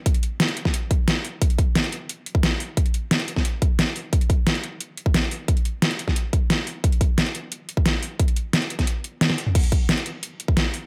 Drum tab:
CC |----------------|----------------|----------------|----------------|
HH |xxx-xxx-x-x-x-o-|xxx-xxx-x-x-x-o-|xxx-xxx-x-x-x-o-|xxx-xxx-x-x-x-o-|
SD |----o--o----o---|----o-------o---|----o--o----o---|----o-------o---|
T1 |----------------|----------------|----------------|----------------|
T2 |----------------|----------------|----------------|----------------|
BD |o------o--o-----|o-o--------o----|o------o--o-----|o-o--------o----|

CC |----------------|----------------|----------------|x---------------|
HH |xxx-xxx-x-x-x-o-|xxx-xxx-x-x-x-o-|xxx-xxxxx-x-x-o-|xxx-xxx-x-x-x-o-|
SD |----o--o----o---|----o-------o---|----o--o----oo--|----o-------o---|
T1 |----------------|----------------|------------o---|----------------|
T2 |----------------|----------------|---------------o|----------------|
BD |o------o--o-----|o-o--------o----|o------o--------|o-o--------o----|